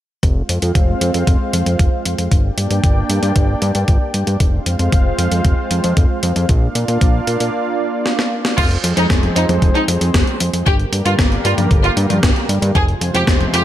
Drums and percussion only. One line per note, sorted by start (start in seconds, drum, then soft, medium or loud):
0.23 kick loud
0.23 closed hi-hat medium
0.49 closed hi-hat medium
0.62 closed hi-hat medium
0.75 kick loud
0.75 closed hi-hat medium
1.01 closed hi-hat medium
1.14 closed hi-hat soft
1.27 kick loud
1.27 closed hi-hat medium
1.53 closed hi-hat medium
1.66 closed hi-hat medium
1.79 kick loud
1.79 closed hi-hat medium
2.06 closed hi-hat medium
2.19 closed hi-hat medium
2.32 kick loud
2.32 closed hi-hat medium
2.58 closed hi-hat medium
2.71 closed hi-hat medium
2.84 kick loud
2.84 closed hi-hat medium
3.10 closed hi-hat medium
3.23 closed hi-hat soft
3.36 kick loud
3.36 closed hi-hat medium
3.62 closed hi-hat medium
3.75 closed hi-hat medium
3.88 kick loud
3.88 closed hi-hat medium
4.14 closed hi-hat medium
4.27 closed hi-hat medium
4.40 kick loud
4.40 closed hi-hat medium
4.66 closed hi-hat medium
4.79 closed hi-hat soft
4.92 kick loud
4.92 closed hi-hat medium
5.19 closed hi-hat medium
5.32 closed hi-hat soft
5.45 kick loud
5.45 closed hi-hat medium
5.71 closed hi-hat medium
5.84 closed hi-hat soft
5.97 kick loud
5.97 closed hi-hat medium
6.23 closed hi-hat medium
6.36 closed hi-hat soft
6.49 kick loud
6.49 closed hi-hat medium
6.75 closed hi-hat medium
6.88 closed hi-hat soft
7.01 kick loud
7.01 closed hi-hat medium
7.27 closed hi-hat medium
7.40 closed hi-hat soft
8.06 snare medium
8.19 snare medium
8.45 snare medium
8.58 kick loud
8.58 closed hi-hat medium
8.58 crash medium
8.71 closed hi-hat soft
8.84 closed hi-hat medium
8.97 closed hi-hat medium
9.10 kick loud
9.10 snare loud
9.10 closed hi-hat medium
9.23 closed hi-hat soft
9.23 high tom medium
9.36 closed hi-hat loud
9.49 closed hi-hat medium
9.49 high tom medium
9.62 kick loud
9.62 closed hi-hat medium
9.75 closed hi-hat soft
9.88 closed hi-hat medium
10.01 closed hi-hat medium
10.14 kick loud
10.14 snare loud
10.14 closed hi-hat medium
10.27 closed hi-hat soft
10.40 closed hi-hat loud
10.54 closed hi-hat medium
10.66 kick loud
10.66 closed hi-hat medium
10.80 closed hi-hat soft
10.93 closed hi-hat medium
11.06 closed hi-hat medium
11.19 kick loud
11.19 snare loud
11.19 closed hi-hat medium
11.32 closed hi-hat soft
11.45 closed hi-hat medium
11.58 closed hi-hat medium
11.58 high tom medium
11.71 kick loud
11.71 closed hi-hat medium
11.84 closed hi-hat soft
11.97 closed hi-hat medium
12.10 closed hi-hat medium
12.10 high tom medium
12.23 kick loud
12.23 snare loud
12.23 closed hi-hat medium
12.36 closed hi-hat soft
12.49 closed hi-hat medium
12.62 closed hi-hat medium
12.75 kick loud
12.75 closed hi-hat medium
12.88 closed hi-hat soft
13.01 closed hi-hat medium
13.15 closed hi-hat soft
13.27 kick loud
13.27 snare loud
13.27 closed hi-hat soft
13.41 closed hi-hat soft
13.41 high tom medium
13.54 closed hi-hat medium